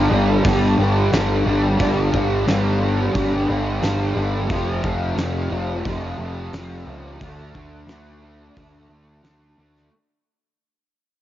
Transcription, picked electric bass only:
0.11 G1
0.45 G1
0.78 G1
1.12 G1
1.46 G1
1.80 G1
2.14 G1
2.47 G1
3.15 G1
3.49 G1
3.83 G1
4.16 G1
4.50 F1
4.84 F1
5.17 F1
5.51 F1
5.85 F1
6.18 F1
6.53 F1
6.86 C#2
7.21 D2
7.55 D2
7.87 D2
8.57 D2
8.89 D2
9.23 D2
9.58 D2

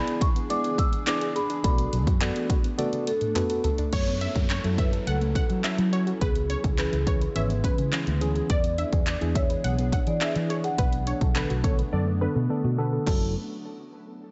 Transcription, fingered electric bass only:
1.64 B1
1.93 B1
2.07 F#2
3.93 F#2
4.35 F#2
4.64 F#2
5.07 C#2
5.50 F#3
5.78 F#3
6.21 C#2
6.64 C#2
6.93 C#2
7.36 G#1
7.79 C#3
8.07 D2
8.50 E2
8.93 E2
9.21 E2
9.64 B1
10.07 E3
10.36 E3
10.78 B1
11.21 B1
11.50 B1
11.93 F#2
12.35 B2
12.64 B2
13.07 F#1

